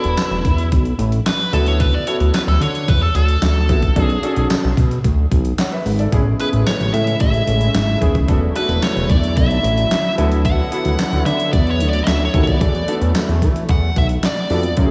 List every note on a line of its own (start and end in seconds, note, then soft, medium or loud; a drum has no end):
0.00 0.36 B3 medium
0.00 0.37 D4 medium
0.00 0.69 E4 medium
0.00 0.37 F#4 medium
0.00 0.37 A4 medium
0.00 closed hi-hat medium
0.04 0.15 E1 loud
0.17 snare loud
0.17 clap medium
0.17 closed hi-hat medium
0.17 tambourine loud
0.31 0.46 E1 loud
0.31 closed hi-hat soft
0.45 0.73 E2 loud
0.45 kick medium
0.45 closed hi-hat medium
0.58 closed hi-hat medium
0.72 0.94 B1 loud
0.72 kick loud
0.72 closed hi-hat medium
0.85 closed hi-hat soft
0.99 1.20 A1 loud
0.99 closed hi-hat medium
1.12 closed hi-hat medium
1.26 1.53 B4 medium
1.26 snare loud
1.26 clap loud
1.26 closed hi-hat medium
1.26 tambourine medium
1.53 1.96 D2 loud
1.53 1.96 B3 medium
1.53 1.96 E4 medium
1.53 1.96 F#4 medium
1.53 1.97 A4 medium
1.53 1.66 A4 loud
1.53 closed hi-hat medium
1.66 1.81 C#5 medium
1.66 closed hi-hat soft
1.80 1.93 B4 loud
1.80 kick loud
1.80 closed hi-hat loud
1.94 2.07 D5 loud
2.07 2.53 B3 medium
2.07 2.53 E4 medium
2.07 2.53 F#4 medium
2.07 2.53 A4 medium
2.07 2.15 C#5 loud
2.07 closed hi-hat medium
2.20 2.31 D2 loud
2.20 closed hi-hat soft
2.34 2.40 B4 medium
2.34 snare loud
2.34 clap medium
2.34 closed hi-hat loud
2.34 tambourine loud
2.47 2.58 D2 loud
2.47 2.62 A4 medium
2.47 closed hi-hat soft
2.61 2.90 D3 loud
2.61 2.89 C#5 medium
2.61 closed hi-hat medium
2.75 closed hi-hat soft
2.88 3.10 E2 loud
2.88 3.02 B4 medium
2.88 kick loud
2.88 closed hi-hat medium
3.02 3.15 A4 medium
3.02 closed hi-hat soft
3.15 3.37 D2 medium
3.15 4.01 A4 medium
3.15 closed hi-hat medium
3.28 closed hi-hat medium
3.42 3.71 D2 medium
3.42 snare loud
3.42 clap medium
3.42 closed hi-hat medium
3.42 tambourine medium
3.69 3.91 A#1 loud
3.69 3.81 B3 medium
3.69 3.81 E4 medium
3.69 3.81 F#4 medium
3.69 3.81 A4 medium
3.69 kick medium
3.69 closed hi-hat medium
3.82 kick medium
3.82 closed hi-hat soft
3.96 4.18 B1 loud
3.96 4.07 C#4 medium
3.96 4.08 D4 medium
3.96 4.08 F#4 medium
3.96 4.08 A4 medium
3.96 kick loud
3.96 closed hi-hat loud
4.01 4.47 G#4 medium
4.10 closed hi-hat soft
4.23 4.69 C#4 medium
4.23 4.69 D4 medium
4.23 4.69 F#4 medium
4.23 4.69 A4 loud
4.23 closed hi-hat medium
4.36 4.48 B1 loud
4.36 closed hi-hat medium
4.50 snare loud
4.50 clap medium
4.50 closed hi-hat loud
4.50 tambourine loud
4.64 4.75 B1 loud
4.64 closed hi-hat soft
4.77 4.99 B2 loud
4.77 kick medium
4.77 closed hi-hat medium
4.91 closed hi-hat soft
5.04 5.26 D2 loud
5.04 kick loud
5.04 closed hi-hat loud
5.31 5.53 B1 medium
5.31 kick loud
5.31 closed hi-hat medium
5.45 closed hi-hat medium
5.58 5.72 C#5 medium
5.58 5.71 F#5 medium
5.58 snare loud
5.58 clap medium
5.58 closed hi-hat medium
5.58 tambourine medium
5.72 5.98 B4 medium
5.72 5.98 E5 medium
5.72 closed hi-hat soft
5.86 6.07 G#1 medium
5.86 open hi-hat medium
5.99 6.25 A4 medium
5.99 6.25 D5 medium
5.99 closed hi-hat soft
6.12 6.34 A1 loud
6.12 8.27 C#3 medium
6.12 8.26 G#3 medium
6.12 10.14 A3 medium
6.12 6.24 B3 medium
6.12 6.24 C#4 medium
6.12 8.27 E4 loud
6.12 6.24 E4 medium
6.12 6.24 G#4 loud
6.12 kick loud
6.12 closed hi-hat loud
6.39 6.85 B3 medium
6.39 6.85 C#4 medium
6.39 6.85 E4 medium
6.39 6.85 G#4 medium
6.39 6.48 B4 medium
6.39 closed hi-hat medium
6.53 6.64 A1 loud
6.53 closed hi-hat soft
6.66 6.93 C#5 medium
6.66 snare loud
6.66 clap medium
6.66 closed hi-hat medium
6.66 tambourine loud
6.80 6.91 A1 loud
6.80 closed hi-hat soft
6.93 7.15 A2 loud
6.93 7.20 E5 medium
6.93 closed hi-hat medium
7.07 closed hi-hat medium
7.20 7.42 A1 loud
7.20 7.98 E5 loud
7.20 kick loud
7.20 closed hi-hat medium
7.34 closed hi-hat soft
7.47 7.69 A1 loud
7.47 closed hi-hat medium
7.61 closed hi-hat medium
7.74 7.96 G#1 medium
7.74 snare loud
7.74 clap loud
7.74 closed hi-hat medium
7.74 tambourine medium
8.01 8.23 D#1 medium
8.01 8.13 B3 medium
8.01 8.13 C#4 medium
8.01 8.13 E4 medium
8.01 8.13 G#4 medium
8.01 kick medium
8.01 closed hi-hat medium
8.15 kick medium
8.15 closed hi-hat soft
8.28 8.50 E1 loud
8.28 14.73 D3 medium
8.28 14.73 F#3 medium
8.28 8.40 B3 medium
8.28 8.40 D4 medium
8.28 14.73 E4 medium
8.28 8.40 F#4 medium
8.28 8.40 A4 medium
8.28 kick loud
8.28 closed hi-hat medium
8.55 9.01 B3 medium
8.55 9.01 D4 medium
8.55 9.01 F#4 medium
8.55 9.02 A4 medium
8.55 8.84 B4 medium
8.55 closed hi-hat medium
8.69 8.80 E1 loud
8.69 closed hi-hat medium
8.82 9.08 C#5 medium
8.82 snare loud
8.82 clap medium
8.82 closed hi-hat medium
8.82 tambourine loud
8.96 9.11 E1 loud
8.96 closed hi-hat soft
9.09 9.38 E2 loud
9.09 9.37 D5 medium
9.09 kick loud
9.09 closed hi-hat medium
9.23 closed hi-hat medium
9.37 9.59 B1 loud
9.37 10.14 E5 loud
9.37 kick loud
9.37 closed hi-hat medium
9.51 closed hi-hat soft
9.63 9.85 A1 loud
9.63 closed hi-hat medium
9.78 closed hi-hat medium
9.91 snare loud
9.91 clap loud
9.91 closed hi-hat medium
9.91 tambourine medium
10.18 10.61 D2 loud
10.18 10.61 B3 loud
10.18 12.59 B3 medium
10.18 10.61 E4 medium
10.18 10.61 F#4 medium
10.18 10.61 A4 loud
10.18 closed hi-hat medium
10.32 closed hi-hat medium
10.45 11.22 F#5 loud
10.45 kick loud
10.45 closed hi-hat medium
10.71 11.17 B3 medium
10.71 11.17 E4 medium
10.71 11.18 F#4 medium
10.71 11.18 A4 medium
10.71 closed hi-hat medium
10.85 10.96 D2 medium
10.85 closed hi-hat medium
10.99 snare loud
10.99 clap medium
10.99 closed hi-hat loud
10.99 tambourine loud
11.12 11.23 D2 loud
11.12 closed hi-hat soft
11.26 11.54 D3 medium
11.26 11.51 E5 medium
11.26 closed hi-hat medium
11.40 closed hi-hat medium
11.53 11.81 E2 loud
11.53 11.70 D5 loud
11.53 kick loud
11.53 closed hi-hat medium
11.67 11.89 C#5 medium
11.67 closed hi-hat soft
11.80 12.02 D2 medium
11.80 closed hi-hat medium
11.89 12.02 D5 medium
11.93 closed hi-hat medium
12.04 12.29 D2 medium
12.04 12.07 D#5 medium
12.04 12.24 E5 loud
12.04 snare loud
12.04 clap loud
12.04 closed hi-hat medium
12.08 tambourine medium
12.25 12.43 C#5 medium
12.33 12.56 D#2 medium
12.33 12.45 B3 medium
12.33 12.45 E4 medium
12.33 12.45 F#4 medium
12.33 12.46 A4 medium
12.33 kick loud
12.33 closed hi-hat medium
12.43 12.93 D5 medium
12.47 kick medium
12.47 closed hi-hat soft
12.60 12.83 E2 loud
12.60 14.75 A3 medium
12.60 12.72 B3 medium
12.60 12.72 D4 medium
12.60 12.72 F#4 medium
12.60 12.72 A4 medium
12.60 kick loud
12.60 closed hi-hat loud
12.75 closed hi-hat soft
12.88 13.34 B3 medium
12.88 13.34 D4 medium
12.88 13.34 F#4 medium
12.88 13.34 A4 medium
12.88 closed hi-hat medium
13.01 13.12 E2 loud
13.01 closed hi-hat medium
13.15 snare loud
13.15 clap medium
13.15 closed hi-hat loud
13.15 tambourine loud
13.29 13.43 E2 loud
13.29 closed hi-hat soft
13.42 13.64 E3 loud
13.42 kick medium
13.42 closed hi-hat medium
13.56 closed hi-hat medium
13.69 13.91 E2 loud
13.69 13.95 F#5 loud
13.69 kick loud
13.69 closed hi-hat medium
13.96 14.18 B1 loud
13.96 14.05 E5 medium
13.96 kick loud
13.96 closed hi-hat medium
14.09 closed hi-hat medium
14.23 14.75 D5 medium
14.23 snare loud
14.23 clap loud
14.23 closed hi-hat medium
14.23 tambourine medium
14.37 closed hi-hat soft
14.50 14.72 F2 loud
14.50 14.62 B3 medium
14.50 14.62 D4 medium
14.50 14.62 F#4 medium
14.50 14.62 A4 medium
14.50 open hi-hat medium
14.63 closed hi-hat soft
14.77 14.91 F#2 loud
14.77 14.91 A3 medium
14.77 14.91 C#4 medium
14.77 14.91 E4 medium
14.77 14.84 F#4 medium
14.77 kick loud
14.77 closed hi-hat medium
14.85 14.91 G#4 medium